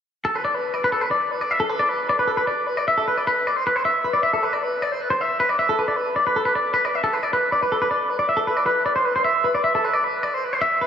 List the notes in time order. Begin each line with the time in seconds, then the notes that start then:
0.25 A4
0.35 B4
0.45 D5
0.54 B4
0.74 D5
0.84 B4
0.92 A4
1.01 B4
1.11 D5
1.31 B4
1.41 D5
1.51 E5
1.60 A4
1.69 B4
1.79 D5
1.89 B4
2.09 D5
2.19 B4
2.27 A4
2.37 B4
2.47 D5
2.67 B4
2.77 D5
2.88 E5
2.98 A4
3.08 B4
3.17 D5
3.27 B4
3.47 D5
3.56 C5
3.67 B4
3.76 C5
3.85 E5
4.04 B4
4.13 D5
4.23 E5
4.33 A4
4.43 B4
4.53 D5
4.63 B4
4.82 D5
4.92 C5
5.01 B4
5.10 C5
5.21 E5
5.40 B4
5.49 D5
5.59 E5
5.69 A4
5.79 B4
5.88 D5
5.96 B4
6.16 D5
6.27 B4
6.36 A4
6.45 B4
6.55 D5
6.74 B4
6.85 D5
6.95 E5
7.04 A4
7.13 B4
7.23 D5
7.33 B4
7.52 D5
7.63 B4
7.72 A4
7.82 B4
7.91 D5
8.10 B4
8.19 D5
8.29 E5
8.37 A4
8.47 B4
8.57 D5
8.66 B4
8.86 D5
8.96 C5
9.05 B4
9.16 C5
9.24 E5
9.44 B4
9.55 D5
9.64 E5
9.75 A4
9.84 B4
9.93 D5
10.04 B4
10.23 D5
10.34 C5
10.44 B4
10.53 C5
10.62 E5
10.81 B4